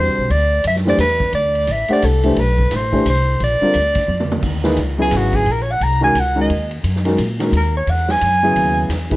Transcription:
Already playing: grand piano D3 G3 C4 F#4 C5, soprano saxophone C5
0.06 upright bass C2
0.18 upright bass B1
0.30 upright bass D2, soprano saxophone D5, ride
0.64 upright bass F#2, soprano saxophone E5, hi-hat pedal, ride
0.76 snare
0.85 grand piano E3 A3 D4 G4 C5, soprano saxophone D5, snare
0.98 upright bass E2, soprano saxophone B4, snare, hi-hat pedal, ride
1.20 kick
1.33 upright bass D2, soprano saxophone D5, ride
1.55 ride
1.67 upright bass A1, hi-hat pedal, ride
1.72 soprano saxophone E5
1.88 grand piano A3 D4 G4 C5 F#5, muted upright bass stroke, ride
1.93 soprano saxophone D5
2.02 upright bass C2, soprano saxophone A4, hi-hat pedal, ride
2.24 grand piano E3 A3 D4 G4 C5, ride
2.36 upright bass B1, soprano saxophone B4, ride
2.58 kick
2.71 upright bass A1, snare, hi-hat pedal, ride
2.75 soprano saxophone C5
2.92 grand piano E3 A3 D4 G4 C5, kick
3.05 upright bass C2, hi-hat pedal, ride
3.09 soprano saxophone C5
3.40 upright bass A#1, soprano saxophone D5, ride
3.61 grand piano D3 G3 C4 F4 A#4, muted upright bass stroke
3.74 upright bass D2, hi-hat pedal, ride
3.95 kick, ride
4.08 upright bass F2, high tom
4.20 mid tom
4.32 mid tom
4.42 upright bass D#2, kick, crash
4.64 grand piano E3 A#3 D#4 G#4 B4, snare
4.76 upright bass C#2, hi-hat pedal, ride
4.98 grand piano C#3 F#3 B3 E4 G#4, soprano saxophone G#4
5.11 upright bass G#1, snare, hi-hat pedal, ride
5.17 soprano saxophone F#4
5.33 soprano saxophone G#4, kick, ride
5.46 upright bass A#1, ride
5.52 soprano saxophone A#4
5.62 soprano saxophone C#5
5.72 soprano saxophone F#5
5.81 upright bass C2, soprano saxophone A#5, ride
6.01 grand piano D#3 G#3 C#4 F#4 A#4, soprano saxophone G#5
6.15 upright bass C#2, hi-hat pedal, ride
6.20 soprano saxophone F#5
6.35 grand piano D#3 G#3 C#4 F#4 A#4
6.41 soprano saxophone D#5
6.49 upright bass D#2, ride
6.71 ride
6.83 upright bass F#2, hi-hat pedal, ride
6.96 snare
7.05 grand piano D#3 G#3 C#4 F#4 A#4, snare, ride
7.18 upright bass A#2, hi-hat pedal, ride
7.39 grand piano D#3 G#3 C#4 F#4 A#4, snare, ride
7.52 upright bass D#2, ride
7.57 soprano saxophone A#4
7.77 soprano saxophone C#5
7.87 upright bass E2, soprano saxophone F#5, hi-hat pedal, ride
8.08 soprano saxophone G#5, snare
8.21 upright bass F#2, ride
8.43 grand piano C#3 F#3 B3 E4 G#4
8.55 upright bass D#2, ride
8.89 upright bass E2, snare, hi-hat pedal, ride
9.10 grand piano A#2 E3 D#4 G#4 B4, kick, ride

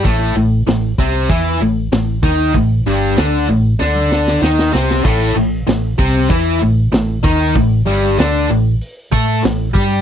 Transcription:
0.04 fingered electric bass A1, distorted electric guitar A2 A3, kick, open hi-hat
0.35 fingered electric bass A1, distorted electric guitar A2, open hi-hat
0.67 fingered electric bass A1, distorted electric guitar A2, snare, open hi-hat
0.98 fingered electric bass C2, distorted electric guitar C3 C4, kick, open hi-hat
1.30 fingered electric bass E2, distorted electric guitar E3 E4, kick, open hi-hat
1.61 fingered electric bass A1, distorted electric guitar A2, open hi-hat
1.92 fingered electric bass A1, distorted electric guitar A2, snare, open hi-hat
2.23 fingered electric bass D#2, distorted electric guitar D#3 D#4, kick, open hi-hat
2.54 fingered electric bass A1, distorted electric guitar A2, kick, open hi-hat
2.86 fingered electric bass G1, distorted electric guitar G2 G3, open hi-hat
3.17 fingered electric bass D2, distorted electric guitar D3 D4, snare, open hi-hat
3.48 fingered electric bass A1, distorted electric guitar A2, open hi-hat
3.79 fingered electric bass D2, distorted electric guitar D3 D4, snare
3.95 high tom
4.12 snare
4.27 snare
4.42 fingered electric bass D#2, distorted electric guitar D#3 D#4, snare
4.59 snare
4.73 fingered electric bass C2, distorted electric guitar C3 C4, snare
4.90 snare
5.04 fingered electric bass A1, distorted electric guitar A2 A3, kick, crash
5.36 fingered electric bass A1, distorted electric guitar A2, open hi-hat
5.67 fingered electric bass A1, distorted electric guitar A2, snare, open hi-hat
5.98 fingered electric bass C2, distorted electric guitar C3 C4, kick, open hi-hat
6.30 fingered electric bass E2, distorted electric guitar E3 E4, kick, open hi-hat
6.60 fingered electric bass A1, distorted electric guitar A2, open hi-hat
6.92 fingered electric bass A1, distorted electric guitar A2, snare, open hi-hat
7.23 fingered electric bass D#2, distorted electric guitar D#3 D#4, kick, open hi-hat
7.55 fingered electric bass A1, distorted electric guitar A2, kick, open hi-hat
7.86 fingered electric bass G1, distorted electric guitar G2 G3, open hi-hat
8.18 fingered electric bass D2, distorted electric guitar D3 D4, snare, open hi-hat
8.49 fingered electric bass A1, distorted electric guitar A2, open hi-hat
8.81 open hi-hat
9.12 fingered electric bass A2, distorted electric guitar A3 A4, kick, open hi-hat
9.43 fingered electric bass A1, distorted electric guitar A2, snare, open hi-hat
9.74 fingered electric bass G2, distorted electric guitar G3 G4, kick, open hi-hat

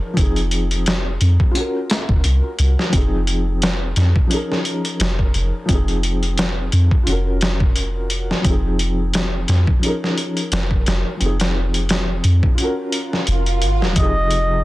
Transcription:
Already playing: felt piano F3 C#4 D#4 G#4 A#4
0.14 808-style bass F1, felt piano F3 C4, kick, closed hi-hat
0.19 felt piano D#4 G#4
0.36 closed hi-hat
0.51 closed hi-hat
0.71 closed hi-hat
0.86 snare, closed hi-hat
1.21 808-style bass F2, closed hi-hat
1.40 kick
1.51 felt piano C#4 F4, closed hi-hat
1.57 felt piano F#4 A#4
1.90 snare, closed hi-hat
2.09 808-style bass F1, kick
2.24 808-style bass C2, closed hi-hat
2.59 808-style bass C2, closed hi-hat
2.79 snare
2.89 808-style bass F1, felt piano F3 C4, kick, closed hi-hat
2.95 felt piano D#4 G#4
3.27 closed hi-hat
3.62 snare, closed hi-hat
3.96 808-style bass F2, snare, closed hi-hat
4.16 kick
4.27 felt piano F3 C#4, closed hi-hat
4.32 felt piano D#4 G#4
4.36 felt piano A#4
4.52 snare
4.65 closed hi-hat
4.85 closed hi-hat
5.00 808-style bass F1, snare, closed hi-hat
5.19 kick
5.34 808-style bass F1, closed hi-hat
5.65 808-style bass F1, felt piano F3 C4, kick, closed hi-hat
5.71 felt piano D#4 G#4
5.88 closed hi-hat
6.03 closed hi-hat
6.23 closed hi-hat
6.38 snare, closed hi-hat
6.72 808-style bass F2, closed hi-hat
6.91 kick
7.03 808-style bass F1, felt piano C#4 F4, closed hi-hat
7.09 felt piano F#4 A#4
7.41 snare, closed hi-hat
7.60 kick
7.76 closed hi-hat
8.10 closed hi-hat
8.31 snare
8.41 808-style bass F1, felt piano F3 C4, kick, closed hi-hat
8.47 felt piano D#4 G#4
8.79 closed hi-hat
9.14 snare, closed hi-hat
9.48 808-style bass F2, snare, closed hi-hat
9.67 kick
9.79 felt piano F3 C#4, closed hi-hat
9.84 felt piano D#4 G#4
9.88 felt piano A#4
10.04 snare
10.18 closed hi-hat
10.37 closed hi-hat
10.52 808-style bass F1, snare, closed hi-hat
10.71 kick
10.86 808-style bass F1, snare, closed hi-hat
11.17 felt piano F3 C4, closed hi-hat
11.21 808-style bass F1, felt piano D#4
11.26 felt piano G#4
11.40 snare, closed hi-hat
11.74 closed hi-hat
11.89 snare, closed hi-hat
12.24 808-style bass F2, closed hi-hat
12.43 kick
12.55 felt piano C#4 F4, closed hi-hat, swell
12.61 felt piano F#4 A#4
12.92 closed hi-hat
13.13 snare
13.27 808-style bass F1, closed hi-hat
13.46 closed hi-hat
13.62 808-style bass G#1, closed hi-hat
13.81 808-style bass D#1, snare
13.93 808-style bass F1, felt piano C3 F3, kick, closed hi-hat
13.98 felt piano D#4 G#4, muted trumpet D#5
14.31 closed hi-hat

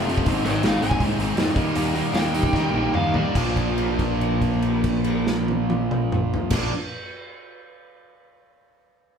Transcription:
Already playing: picked electric bass F1
0.09 distorted electric guitar F2 C3 F3 A3 C4 F4, open hi-hat
0.18 kick
0.26 picked electric bass G#1, distorted electric guitar G#2 D#3 G#3 C4 D#4, kick, open hi-hat
0.45 picked electric bass G#1, distorted electric guitar G#2 D#3 G#3 C4 D#4, overdriven electric guitar C5 D#5, open hi-hat
0.63 picked electric bass G#1, distorted electric guitar G#2 D#3 G#3 C4 D#4, overdriven electric guitar G#4 F5, snare, open hi-hat
0.82 picked electric bass G#1, distorted electric guitar G#2 D#3 G#3 C4 D#4, overdriven electric guitar G#5, open hi-hat
0.91 kick
1.00 picked electric bass C2, distorted electric guitar G#2 D#3 G#3 C4 D#4, kick, open hi-hat
1.19 picked electric bass G#1, distorted electric guitar G#2 D#3 G#3 C4 D#4, open hi-hat
1.37 picked electric bass F2, distorted electric guitar G#2 D#3 G#3 C4 D#4, snare, open hi-hat
1.56 picked electric bass D#2, distorted electric guitar D#3 G3 A#3 D#4, kick, open hi-hat
1.75 picked electric bass D#2, distorted electric guitar D#3 G3 A#3 D#4, open hi-hat
1.95 distorted electric guitar D#3 G3 A#3 D#4, open hi-hat
2.14 picked electric bass D#2, distorted electric guitar D#3 G3 A#3 D#4, overdriven electric guitar G5, snare, open hi-hat
2.34 distorted electric guitar D#3 G3 A#3 D#4, open hi-hat
2.43 kick
2.53 picked electric bass D#3, distorted electric guitar D#3 G3 A#3 D#4, kick, snare
2.73 picked electric bass A#1, distorted electric guitar D#3 G3 A#3 D#4
2.93 picked electric bass D#2, distorted electric guitar D#3 G3 A#3 D#4, overdriven electric guitar F5, mid tom
3.14 distorted electric guitar D#3 G3 A#3 D#4, overdriven electric guitar D5, floor tom
3.35 picked electric bass A#1, distorted electric guitar A#2 F3 A#3, kick, crash
3.39 distorted electric guitar D4
3.56 kick, crash
3.78 crash
3.99 kick, crash
4.21 crash
4.42 kick, crash
4.62 crash
4.84 kick, crash
5.04 crash
5.27 snare
5.48 high tom
5.70 high tom
5.91 mid tom
6.12 mid tom
6.34 floor tom
6.50 picked electric bass A#1, distorted electric guitar A#2 F3 A#3, kick, snare, crash
6.55 distorted electric guitar D4

